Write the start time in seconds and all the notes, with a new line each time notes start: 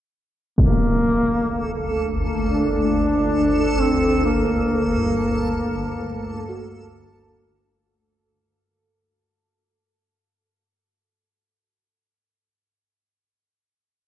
0.58 G1 D2 A#3 A4, impact
2.47 D4
3.80 C4
4.25 A#3
4.97 G2
6.49 F#4